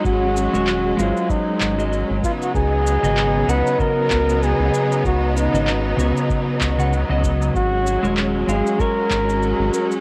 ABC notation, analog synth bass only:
X:1
M:4/4
L:1/16
Q:"Swing 16ths" 1/4=96
K:Db
V:1 name="Analog synth bass" clef=bass
A,,,3 E,,,3 A,,, z3 A,,,3 A,,, z2 | D,,3 A,,,3 D,, z3 D,,3 D,, z2 | D,,3 A,,,3 D,, z3 D,,3 D,,3 | A,,,3 E,,,3 A,,, z3 A,,,3 A,,, z2 |]